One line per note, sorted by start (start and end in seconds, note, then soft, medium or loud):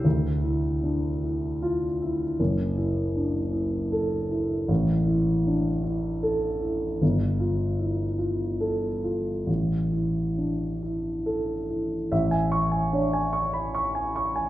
0.05 2.35 D2 soft
0.43 1.08 E4 soft
0.83 1.23 D4 soft
1.23 1.86 E4 soft
1.62 2.24 F4 soft
2.02 2.39 E4 soft
2.40 4.65 F#1 soft
2.77 3.38 E4 soft
3.16 3.54 D4 soft
3.53 4.15 E4 soft
3.92 4.54 A4 soft
4.31 4.69 E4 soft
4.68 6.97 A1 soft
5.07 5.69 E4 soft
5.47 5.85 D4 soft
5.84 6.47 E4 soft
6.23 6.86 A4 soft
6.62 7.01 E4 soft
7.02 9.43 G1 soft
7.40 8.03 F4 soft
7.79 8.20 E4 soft
8.18 8.86 F4 soft
8.61 9.29 A4 soft
9.04 9.48 F4 soft
9.46 12.07 A1 soft
9.92 10.65 E4 soft
10.38 10.82 D4 soft
10.83 11.52 E4 soft
11.26 11.95 A4 soft
11.70 12.12 E4 soft
12.12 14.49 A1 soft
12.12 12.44 E5 soft
12.31 12.64 G#5 soft
12.52 12.84 C#6 soft
12.72 13.04 G#5 soft
12.92 13.33 D4 soft
12.92 13.25 C#5 soft
13.13 13.46 G#5 soft
13.33 13.66 C#6 soft
13.53 13.74 B5 soft
13.75 14.07 C#6 soft
13.95 14.28 G#5 soft
14.16 14.48 C#6 soft
14.36 14.49 G#5 soft